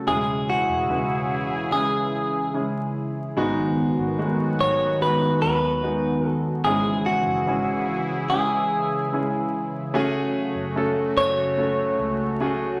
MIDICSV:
0, 0, Header, 1, 5, 480
1, 0, Start_track
1, 0, Key_signature, 4, "minor"
1, 0, Tempo, 821918
1, 43, Time_signature, 4, 2, 24, 8
1, 7475, End_track
2, 0, Start_track
2, 0, Title_t, "Clean electric guitar"
2, 0, Program_c, 0, 27
2, 44, Note_on_c, 0, 68, 77
2, 290, Note_on_c, 0, 66, 73
2, 291, Note_off_c, 0, 68, 0
2, 1007, Note_on_c, 0, 68, 65
2, 1028, Note_off_c, 0, 66, 0
2, 1462, Note_off_c, 0, 68, 0
2, 2690, Note_on_c, 0, 73, 86
2, 2930, Note_off_c, 0, 73, 0
2, 2933, Note_on_c, 0, 71, 85
2, 3151, Note_off_c, 0, 71, 0
2, 3165, Note_on_c, 0, 71, 80
2, 3673, Note_off_c, 0, 71, 0
2, 3673, Note_on_c, 0, 69, 80
2, 3878, Note_off_c, 0, 69, 0
2, 3880, Note_on_c, 0, 68, 87
2, 4123, Note_on_c, 0, 66, 81
2, 4129, Note_off_c, 0, 68, 0
2, 4846, Note_on_c, 0, 68, 68
2, 4865, Note_off_c, 0, 66, 0
2, 5301, Note_off_c, 0, 68, 0
2, 6526, Note_on_c, 0, 73, 100
2, 7475, Note_off_c, 0, 73, 0
2, 7475, End_track
3, 0, Start_track
3, 0, Title_t, "Grand piano"
3, 0, Program_c, 1, 0
3, 0, Control_c, 1, 64, 127
3, 39, Note_on_c, 1, 56, 81
3, 42, Note_on_c, 1, 61, 70
3, 43, Note_on_c, 1, 52, 54
3, 46, Note_on_c, 1, 64, 72
3, 46, Note_on_c, 1, 68, 90
3, 52, Control_c, 1, 64, 0
3, 154, Control_c, 1, 64, 127
3, 497, Note_off_c, 1, 56, 0
3, 499, Note_off_c, 1, 61, 0
3, 501, Note_off_c, 1, 64, 0
3, 501, Note_off_c, 1, 68, 0
3, 520, Note_on_c, 1, 56, 63
3, 523, Note_on_c, 1, 61, 57
3, 524, Note_on_c, 1, 64, 55
3, 526, Note_on_c, 1, 71, 69
3, 740, Note_off_c, 1, 52, 0
3, 978, Note_off_c, 1, 56, 0
3, 979, Note_off_c, 1, 61, 0
3, 980, Note_off_c, 1, 64, 0
3, 981, Note_off_c, 1, 71, 0
3, 1000, Note_on_c, 1, 56, 64
3, 1005, Note_on_c, 1, 61, 59
3, 1007, Note_on_c, 1, 64, 59
3, 1009, Note_on_c, 1, 68, 72
3, 1458, Note_off_c, 1, 56, 0
3, 1460, Note_off_c, 1, 61, 0
3, 1461, Note_off_c, 1, 64, 0
3, 1462, Note_off_c, 1, 68, 0
3, 1483, Note_on_c, 1, 56, 62
3, 1485, Note_on_c, 1, 61, 60
3, 1489, Note_on_c, 1, 64, 54
3, 1490, Note_on_c, 1, 68, 70
3, 1939, Note_off_c, 1, 56, 0
3, 1940, Note_off_c, 1, 61, 0
3, 1942, Note_off_c, 1, 64, 0
3, 1943, Note_off_c, 1, 68, 0
3, 1965, Note_on_c, 1, 56, 94
3, 1967, Note_on_c, 1, 44, 60
3, 1967, Note_on_c, 1, 59, 87
3, 1970, Note_on_c, 1, 63, 90
3, 1970, Note_on_c, 1, 66, 109
3, 1972, Control_c, 1, 64, 0
3, 2065, Control_c, 1, 64, 127
3, 2420, Note_off_c, 1, 56, 0
3, 2421, Note_off_c, 1, 59, 0
3, 2423, Note_off_c, 1, 63, 0
3, 2423, Note_off_c, 1, 66, 0
3, 2444, Note_on_c, 1, 56, 75
3, 2447, Note_on_c, 1, 57, 55
3, 2447, Note_on_c, 1, 63, 69
3, 2450, Note_on_c, 1, 66, 79
3, 2483, Note_off_c, 1, 57, 0
3, 2486, Note_on_c, 1, 59, 66
3, 2662, Note_off_c, 1, 44, 0
3, 2900, Note_off_c, 1, 56, 0
3, 2901, Note_off_c, 1, 63, 0
3, 2903, Note_off_c, 1, 66, 0
3, 2914, Note_off_c, 1, 59, 0
3, 2921, Note_on_c, 1, 56, 66
3, 2923, Note_on_c, 1, 59, 59
3, 2924, Note_on_c, 1, 63, 63
3, 2927, Note_on_c, 1, 66, 74
3, 3378, Note_off_c, 1, 56, 0
3, 3379, Note_off_c, 1, 59, 0
3, 3380, Note_off_c, 1, 63, 0
3, 3381, Note_off_c, 1, 66, 0
3, 3404, Note_on_c, 1, 56, 64
3, 3405, Note_on_c, 1, 59, 61
3, 3408, Note_on_c, 1, 63, 61
3, 3410, Note_on_c, 1, 66, 74
3, 3859, Note_off_c, 1, 56, 0
3, 3860, Note_off_c, 1, 59, 0
3, 3862, Note_off_c, 1, 63, 0
3, 3863, Note_off_c, 1, 66, 0
3, 3884, Note_on_c, 1, 56, 83
3, 3886, Note_on_c, 1, 61, 74
3, 3887, Note_on_c, 1, 44, 56
3, 3888, Note_on_c, 1, 64, 74
3, 3891, Control_c, 1, 64, 0
3, 3891, Note_on_c, 1, 68, 85
3, 4000, Control_c, 1, 64, 127
3, 4340, Note_off_c, 1, 56, 0
3, 4341, Note_off_c, 1, 61, 0
3, 4342, Note_off_c, 1, 64, 0
3, 4343, Note_off_c, 1, 68, 0
3, 4363, Note_on_c, 1, 61, 56
3, 4364, Note_on_c, 1, 56, 64
3, 4368, Note_on_c, 1, 64, 58
3, 4372, Note_on_c, 1, 68, 74
3, 4582, Note_off_c, 1, 44, 0
3, 4819, Note_off_c, 1, 61, 0
3, 4820, Note_off_c, 1, 56, 0
3, 4822, Note_off_c, 1, 64, 0
3, 4823, Note_off_c, 1, 68, 0
3, 4847, Note_on_c, 1, 56, 65
3, 4850, Note_on_c, 1, 61, 63
3, 4851, Note_on_c, 1, 64, 62
3, 4852, Note_on_c, 1, 68, 72
3, 5301, Note_off_c, 1, 56, 0
3, 5303, Note_off_c, 1, 61, 0
3, 5303, Note_off_c, 1, 64, 0
3, 5303, Note_off_c, 1, 68, 0
3, 5328, Note_on_c, 1, 56, 67
3, 5333, Note_on_c, 1, 61, 63
3, 5334, Note_on_c, 1, 64, 63
3, 5338, Note_on_c, 1, 68, 73
3, 5782, Note_off_c, 1, 56, 0
3, 5784, Note_off_c, 1, 61, 0
3, 5785, Note_off_c, 1, 64, 0
3, 5787, Note_off_c, 1, 68, 0
3, 5804, Note_on_c, 1, 57, 100
3, 5805, Note_on_c, 1, 61, 94
3, 5810, Control_c, 1, 64, 0
3, 5810, Note_on_c, 1, 66, 91
3, 5811, Note_on_c, 1, 68, 112
3, 5918, Control_c, 1, 64, 127
3, 6259, Note_off_c, 1, 57, 0
3, 6260, Note_off_c, 1, 61, 0
3, 6263, Note_off_c, 1, 66, 0
3, 6263, Note_off_c, 1, 68, 0
3, 6283, Note_on_c, 1, 57, 76
3, 6285, Note_on_c, 1, 61, 74
3, 6291, Note_on_c, 1, 66, 69
3, 6292, Note_on_c, 1, 69, 90
3, 6739, Note_off_c, 1, 57, 0
3, 6740, Note_off_c, 1, 61, 0
3, 6743, Note_off_c, 1, 66, 0
3, 6743, Note_off_c, 1, 69, 0
3, 6760, Note_on_c, 1, 57, 73
3, 6765, Note_on_c, 1, 61, 66
3, 6766, Note_on_c, 1, 66, 68
3, 6768, Note_on_c, 1, 69, 82
3, 7218, Note_off_c, 1, 57, 0
3, 7220, Note_off_c, 1, 61, 0
3, 7221, Note_off_c, 1, 66, 0
3, 7222, Note_off_c, 1, 69, 0
3, 7244, Note_on_c, 1, 57, 90
3, 7245, Note_on_c, 1, 61, 72
3, 7249, Note_on_c, 1, 66, 79
3, 7250, Note_on_c, 1, 68, 92
3, 7475, Note_off_c, 1, 57, 0
3, 7475, Note_off_c, 1, 61, 0
3, 7475, Note_off_c, 1, 66, 0
3, 7475, Note_off_c, 1, 68, 0
3, 7475, End_track
4, 0, Start_track
4, 0, Title_t, "Analog synth pad"
4, 0, Program_c, 2, 89
4, 37, Note_on_c, 2, 64, 69
4, 39, Note_on_c, 2, 52, 68
4, 41, Note_on_c, 2, 68, 85
4, 45, Note_on_c, 2, 49, 71
4, 1941, Note_off_c, 2, 64, 0
4, 1942, Note_off_c, 2, 52, 0
4, 1943, Note_off_c, 2, 68, 0
4, 1945, Note_off_c, 2, 49, 0
4, 1971, Note_on_c, 2, 51, 71
4, 1972, Note_on_c, 2, 54, 65
4, 1972, Note_on_c, 2, 59, 67
4, 1972, Note_on_c, 2, 66, 84
4, 3868, Note_off_c, 2, 51, 0
4, 3868, Note_off_c, 2, 59, 0
4, 3869, Note_off_c, 2, 54, 0
4, 3869, Note_off_c, 2, 66, 0
4, 3874, Note_on_c, 2, 52, 68
4, 3874, Note_on_c, 2, 68, 86
4, 3875, Note_on_c, 2, 49, 72
4, 3877, Note_on_c, 2, 64, 71
4, 5779, Note_off_c, 2, 52, 0
4, 5780, Note_off_c, 2, 68, 0
4, 5781, Note_off_c, 2, 64, 0
4, 5802, Note_on_c, 2, 54, 75
4, 5804, Note_on_c, 2, 66, 91
4, 5807, Note_on_c, 2, 57, 69
4, 7475, Note_off_c, 2, 49, 0
4, 7475, Note_off_c, 2, 54, 0
4, 7475, Note_off_c, 2, 57, 0
4, 7475, Note_off_c, 2, 66, 0
4, 7475, End_track
5, 0, Start_track
5, 0, Title_t, "Fingered electric bass"
5, 0, Program_c, 3, 33
5, 44, Note_on_c, 3, 28, 85
5, 380, Note_off_c, 3, 28, 0
5, 403, Note_on_c, 3, 28, 77
5, 515, Note_off_c, 3, 28, 0
5, 524, Note_on_c, 3, 28, 88
5, 1940, Note_off_c, 3, 28, 0
5, 1966, Note_on_c, 3, 32, 87
5, 2301, Note_off_c, 3, 32, 0
5, 2325, Note_on_c, 3, 32, 88
5, 2661, Note_off_c, 3, 32, 0
5, 2691, Note_on_c, 3, 32, 83
5, 3144, Note_off_c, 3, 32, 0
5, 3170, Note_on_c, 3, 39, 70
5, 3863, Note_off_c, 3, 39, 0
5, 3886, Note_on_c, 3, 32, 88
5, 4221, Note_off_c, 3, 32, 0
5, 4245, Note_on_c, 3, 30, 85
5, 4363, Note_off_c, 3, 30, 0
5, 4363, Note_on_c, 3, 32, 86
5, 5800, Note_off_c, 3, 32, 0
5, 6162, Note_on_c, 3, 30, 83
5, 6500, Note_off_c, 3, 30, 0
5, 6522, Note_on_c, 3, 30, 84
5, 6979, Note_off_c, 3, 30, 0
5, 7003, Note_on_c, 3, 37, 83
5, 7475, Note_off_c, 3, 37, 0
5, 7475, End_track
0, 0, End_of_file